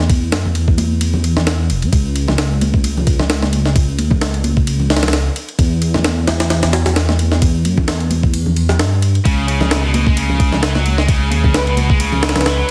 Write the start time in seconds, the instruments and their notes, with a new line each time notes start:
Already playing: detuned saw bass E2
0.09 kick, ride
0.32 detuned saw bass F#2, snare, ride, high conga
0.45 detuned saw bass E2, low conga
0.55 ride
0.68 kick
0.78 ride, high conga
1.01 ride
1.13 low conga
1.24 ride
1.37 snare, low conga
1.47 snare, ride
1.70 detuned saw bass E1, ride
1.82 detuned saw bass G2, ride
1.93 detuned saw bass C#2, kick, ride
2.16 ride
2.28 snare, high conga, low conga
2.38 snare, ride
2.61 ride, high conga
2.74 kick
2.84 ride
2.97 low conga
3.07 kick, ride
3.19 snare, low conga
3.30 snare, ride
3.42 snare, high conga
3.53 ride
3.66 snare
3.76 kick, ride
3.98 detuned saw bass D#2, ride, high conga
4.10 detuned saw bass C#2, kick, low conga
4.21 snare, ride
4.34 ride
4.44 ride, high conga
4.57 kick
4.67 ride
4.80 low conga
4.90 snare, ride
4.97 snare, ride
5.03 snare, ride, low conga
5.08 snare, ride
5.13 snare, ride
5.36 ride
5.49 ride
5.59 detuned saw bass E2, kick, ride
5.82 ride
5.94 snare, high conga, low conga
6.04 snare, ride
6.27 snare, ride, high conga
6.40 snare, ride
6.50 snare, ride
6.63 snare, ride, low conga
6.73 snare, ride
6.86 snare, ride, low conga
6.96 snare, ride
7.09 snare, high conga
7.19 ride
7.32 snare
7.42 kick, ride
7.65 detuned saw bass F#2, ride, high conga
7.78 detuned saw bass E2, kick, high conga, low conga
7.88 snare, ride
8.00 ride
8.10 ride, high conga
8.23 kick
8.34 ride
8.46 low conga
8.56 ride
8.69 snare, low conga
8.79 detuned saw bass G2, snare, ride
9.02 ride
9.15 ride
9.25 detuned saw bass C#2, distorted electric guitar C#3, kick, ride
9.48 distorted electric guitar C#3, ride
9.61 snare, high conga, low conga
9.71 snare, ride
9.83 distorted electric guitar B2
9.94 distorted electric guitar B2, ride, high conga
10.07 distorted electric guitar G#3, kick
10.16 distorted electric guitar C#3, ride
10.30 low conga
10.40 kick, ride
10.52 snare, low conga
10.62 distorted electric guitar E3, snare, ride
10.75 distorted electric guitar F#3, snare, high conga
10.86 ride
10.98 distorted electric guitar G#3, snare
11.08 distorted electric guitar C#3, kick, ride
11.31 detuned saw bass D#2, distorted electric guitar C#3, ride, high conga
11.44 detuned saw bass C#2, kick, low conga
11.54 soft synth lead B4, snare, ride
11.66 distorted electric guitar B2, soft synth lead B4, ride
11.77 distorted electric guitar B2, ride, high conga
11.89 distorted electric guitar G#3, kick
12.00 distorted electric guitar C#3, ride
12.12 low conga
12.23 snare, ride
12.29 snare, ride
12.36 soft synth lead B4, snare, ride, low conga
12.41 snare, ride
12.46 distorted electric guitar E3, snare, ride
12.58 distorted electric guitar F#3